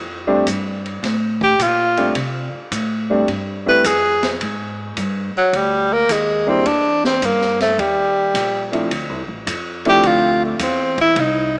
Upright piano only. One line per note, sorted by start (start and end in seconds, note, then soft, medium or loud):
0.27 0.44 G3 medium
0.27 0.44 A3 medium
0.27 0.44 C4 medium
0.27 0.44 D4 medium
1.97 2.13 G3 medium
1.97 2.14 A3 medium
1.97 2.14 C4 medium
1.97 2.14 D4 medium
3.10 3.26 G3 medium
3.10 3.26 A3 medium
3.10 3.26 C4 medium
3.10 3.27 D4 medium
3.66 3.82 G3 medium
3.66 3.82 A3 medium
3.66 3.83 C4 medium
3.66 3.83 E4 medium
6.47 6.63 G3 medium
6.47 6.63 A#3 medium
6.47 6.64 D4 medium
6.47 6.64 E4 medium
6.47 6.64 G4 medium
8.72 8.89 F3 medium
8.72 8.89 A3 medium
8.72 8.89 C4 medium
8.72 8.89 D4 medium
8.72 8.89 E4 medium
9.85 10.56 F3 medium
9.85 10.56 A3 medium
9.85 10.56 C4 medium
9.85 10.56 D4 medium
9.85 10.56 E4 medium